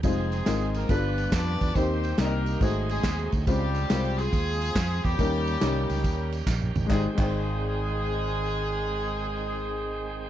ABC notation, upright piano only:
X:1
M:4/4
L:1/8
Q:"Swing" 1/4=140
K:Ab
V:1 name="Upright piano"
[G,A,CEFc] z [A,CEFB]2 [G,=B,=DF=A=B]3 z | [B,CEGc] z [B,CEG=de]2 [=A,E_G_Ac]3 z | [A,CFc] z [A,CFBc]3 z3 | [G,B,DEB] z [G,B,DEB]3 z3 |
[A,EGc] [A,Ecg]6- [A,Ecg]- | [A,Ecg]8 |]
V:2 name="Upright piano" clef=bass
z4 G,,3 z | E,3 z A,,3 z | D,3 z4 z | E,3 z4 z |
A,,, A,,,6- A,,,- | A,,,8 |]